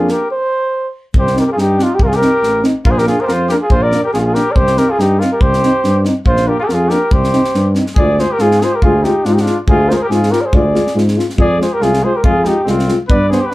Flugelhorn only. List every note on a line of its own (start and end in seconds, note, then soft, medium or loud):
0.00 0.12 G#4 medium
0.10 0.31 A#4 medium
0.31 0.90 C5 medium
1.18 1.41 C5 medium
1.40 1.46 A#4 medium
1.46 1.50 A#4 medium
1.52 1.59 G#4 medium
1.61 1.84 G4 medium
1.83 1.96 F4 medium
1.95 2.04 G4 medium
2.03 2.10 A#4 medium
2.08 2.18 G#4 medium
2.16 2.64 A#4 loud
2.86 2.92 A#4 loud
2.90 3.00 C5 medium
2.98 3.07 A#4 loud
3.08 3.22 G#4 medium
3.20 3.23 A#4 medium
3.20 3.29 C5 medium
3.27 3.32 A#4 loud
3.27 3.50 C5 medium
3.51 3.56 A#4 medium
3.62 3.72 G#4 medium
3.71 3.84 C5 loud
3.82 4.03 D5 medium
4.05 4.12 A#4 medium
4.13 4.18 G#4 medium
4.20 4.25 G#4 medium
4.26 4.35 G#4 medium
4.33 4.52 A#4 medium
4.51 4.57 D5 medium
4.55 4.80 C5 loud
4.78 4.93 A#4 medium
4.91 5.03 G#4 medium
5.01 5.21 G4 medium
5.19 5.22 A#4 medium
5.32 5.43 A#4 medium
5.42 6.05 C5 loud
6.27 6.49 C5 loud
6.48 6.59 A#4 medium
6.62 6.69 G#4 medium
6.68 6.76 A#4 medium
6.74 6.92 G#4 medium
6.91 7.14 A#4 medium
7.13 7.76 C5 medium
7.99 8.21 D5 loud
8.20 8.34 C5 medium
8.33 8.43 A#4 medium
8.42 8.65 G#4 medium
8.64 8.77 C5 medium
8.76 8.83 A#4 medium
8.84 9.06 G#4 medium
9.04 9.27 G4 medium
9.25 9.35 F4 medium
9.34 9.43 G4 medium
9.41 9.58 F4 medium
9.69 9.90 G#4 loud
9.89 9.96 A#4 medium
9.89 9.92 C5 medium
9.95 10.00 C5 medium
10.01 10.08 A#4 medium
10.09 10.32 G#4 medium
10.31 10.43 A#4 medium
10.41 10.57 C5 medium
10.41 10.47 D5 medium
10.55 10.97 D5 medium
11.41 11.60 D5 loud
11.62 11.75 C5 medium
11.73 11.84 A#4 loud
11.83 12.06 G#4 medium
12.04 12.18 C5 medium
12.16 12.25 A#4 medium
12.26 12.49 G#4 medium
12.47 12.67 G4 medium
12.69 12.99 F4 medium
13.10 13.30 D5 loud
13.32 13.47 C5 medium
13.46 13.54 B4 medium